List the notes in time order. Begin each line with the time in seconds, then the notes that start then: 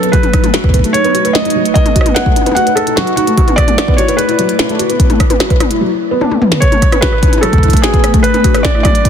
Already playing: F#3 B4
0.03 B3, closed hi-hat
0.12 F#3 A3 D#4 B4, kick, closed hi-hat
0.23 closed hi-hat, high tom
0.33 D#4, kick, cross-stick, closed hi-hat
0.44 A3, closed hi-hat, high tom
0.54 F#4, cross-stick, snare, closed hi-hat
0.64 B3, kick
0.69 kick
0.74 B3, kick, closed hi-hat
0.79 kick
0.84 A3, closed hi-hat
0.93 C#5, closed hi-hat
1.04 B3, closed hi-hat
1.15 F#4, closed hi-hat
1.25 B4, closed hi-hat
1.33 D#5, snare, closed hi-hat
1.45 D#4, closed hi-hat
1.50 closed hi-hat
1.55 F#3
1.66 closed hi-hat
1.74 D#4 D#5, kick, closed hi-hat
1.86 A3, closed hi-hat, high tom
1.96 F#4, kick, closed hi-hat
2.01 cross-stick
2.06 B3, closed hi-hat, high tom
2.14 B3 F#5, snare, closed hi-hat
2.26 A3, kick
2.36 closed hi-hat, high tom
2.41 high tom
2.46 B3, closed hi-hat, high tom
2.52 F#5, high tom
2.57 F#4, closed hi-hat
2.67 B4, closed hi-hat
2.75 A4, cross-stick, closed hi-hat
2.87 D#4, closed hi-hat
2.96 F#3 F#4, snare, closed hi-hat
3.07 closed hi-hat
3.16 D#4 F#4, closed hi-hat
3.27 A3, closed hi-hat
3.38 E4 F#4 D5, kick, closed hi-hat
3.48 B3, closed hi-hat, high tom
3.56 B3 D5, kick, cross-stick, closed hi-hat
3.68 A3, closed hi-hat, high tom
3.78 cross-stick, snare, closed hi-hat
3.88 B3, kick
3.97 F#4 C#5, closed hi-hat
4.08 B4, closed hi-hat
4.17 B4, closed hi-hat
4.29 E4, closed hi-hat
4.39 F#3, closed hi-hat
4.49 closed hi-hat
4.59 E4, snare, closed hi-hat
4.69 A3, closed hi-hat
4.79 F#4, closed hi-hat
4.90 B3, closed hi-hat
5.00 B3, kick, closed hi-hat
5.10 A3, closed hi-hat, high tom
5.20 kick, cross-stick, closed hi-hat
5.30 B3, closed hi-hat, high tom
5.40 F#4, cross-stick, snare, closed hi-hat
5.50 B4, kick, closed hi-hat
5.60 cross-stick, closed hi-hat, high tom
5.71 E4, closed hi-hat
5.81 F#3
6.11 B3
6.21 D4, high tom
6.31 A3, high tom
6.42 B3, mid tom
6.52 B3, snare
6.60 A3 B3 D4 B4 C#5, kick, closed hi-hat
6.72 A3, closed hi-hat, high tom
6.82 kick, cross-stick, closed hi-hat
6.92 B3, cross-stick, closed hi-hat, high tom
7.01 F#4 B4, kick, snare, closed hi-hat
7.13 B4, cross-stick
7.23 kick, closed hi-hat, high tom
7.28 high tom
7.33 E4, closed hi-hat, high tom
7.38 A4, high tom
7.43 F#3, cross-stick, closed hi-hat
7.53 kick, closed hi-hat
7.58 kick
7.63 E4, kick, closed hi-hat
7.68 kick, closed hi-hat
7.73 A3, kick, closed hi-hat
7.77 closed hi-hat
7.82 F#4 G#4, snare, closed hi-hat
7.94 B3, kick, closed hi-hat
8.04 B3, cross-stick, closed hi-hat
8.14 A3, kick, closed hi-hat
8.23 B4, closed hi-hat
8.34 B3, closed hi-hat, high tom
8.44 F#4, kick, cross-stick, closed hi-hat
8.54 B4, cross-stick, closed hi-hat, high tom
8.63 D5, kick, snare, closed hi-hat
8.75 E4, cross-stick
8.83 F#3 D5, kick, cross-stick, closed hi-hat, high tom
8.95 closed hi-hat
9.05 E4, kick, closed hi-hat